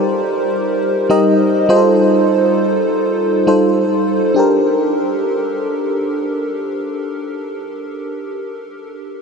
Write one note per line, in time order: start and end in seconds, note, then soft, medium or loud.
0.00 0.73 G3 medium
0.00 0.73 D#4 medium
0.00 0.73 G4 medium
0.00 0.73 A#4 medium
0.00 0.74 C5 medium
1.10 1.68 G3 medium
1.10 1.68 D#4 medium
1.10 1.69 G4 medium
1.10 1.70 A#4 medium
1.10 1.70 D#5 loud
1.69 2.81 G3 medium
1.69 2.81 D#4 medium
1.69 2.81 F4 medium
1.69 1.77 G#4 medium
1.69 2.81 C5 loud
1.76 2.85 A4 medium
3.47 4.31 G3 medium
3.47 4.31 D#4 medium
3.47 4.31 F4 medium
3.47 4.32 A4 medium
3.47 4.32 C5 loud
4.34 8.19 D4 medium
4.34 8.20 G4 medium
4.34 8.21 A4 medium
4.39 8.22 A#4 medium